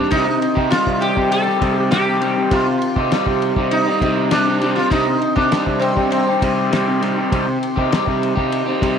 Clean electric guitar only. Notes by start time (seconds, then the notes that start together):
Already playing: C3 G3 D#4 G4
0.00 C4
0.11 C3 G3 C4 D#4 G4
0.27 muted clean electric guitar stroke
0.55 C4 D#4 G4
0.71 C3 G3 C4 D#4 G4
0.85 C4 D#4 G4
1.15 C4 D#4 G4
1.46 C4 D#4 G4
1.60 G3 C4 D#4 G4
1.90 C3 G3 C4 D#4 G4
2.06 C4 D#4 G4
2.21 G3 C4 D#4 G4
2.35 C4 D#4 G4
2.51 C3 G3 C4 D#4 G4
2.66 muted clean electric guitar stroke
2.96 C4 D#4 G4
3.11 C3 G3 C4 D#4 G4
3.26 C4 D#4 G4
3.57 C4 D#4 G4
3.86 C4 D#4 G4
4.02 G3 C4 D#4 G4
4.31 C3 G3 C4 D#4 G4
4.47 C4 D#4 G4
4.61 G3 C4 D#4 G4
4.75 C4 D#4 G4
4.91 C3 G3 C4 D#4 G4
5.07 muted clean electric guitar stroke
5.36 C4 D#4 G4
5.51 C3 G3 C4 D#4 G4
5.66 C4 D#4 G4
5.96 C4 D#4 G4
6.27 C4 D#4 G4
6.41 G3 C4 D#4 G4
6.71 C3 G3 C4 D#4 G4
6.86 C4 D#4 G4
7.00 G3 C4 D#4 G4
7.16 C4 D#4 G4
7.30 C3 G3 C4 D#4 G4
7.47 muted clean electric guitar stroke
7.76 C4 D#4 G4
7.90 C3 G3 C4 D#4 G4
8.06 C4 D#4 G4
8.35 C4 D#4 G4
8.66 C4 D#4 G4
8.81 G3 C4 D#4 G4